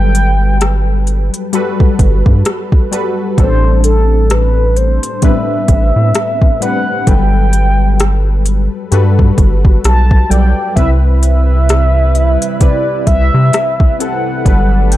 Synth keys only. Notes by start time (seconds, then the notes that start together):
Already playing: F#3 G3 A4 B4
1.53 G3 F#4 A4 B4
2.91 G3 F#4 A4 B4
3.37 A2 G3 B3 D4 A4
3.45 C4
5.22 A2 G3 B3 D4 B4
5.30 C4
6.60 A2 G3 C4 D4 B4
7.06 F#3 G3 A4 B4
8.91 G3 F#4 A4 B4
10.29 F#3 G3 A4 D5
10.76 C3 C4 E4 B4
12.60 C3 C4 E4 B4
13.99 C3 C4 E4 A4
14.45 F#3 G3 A4 B4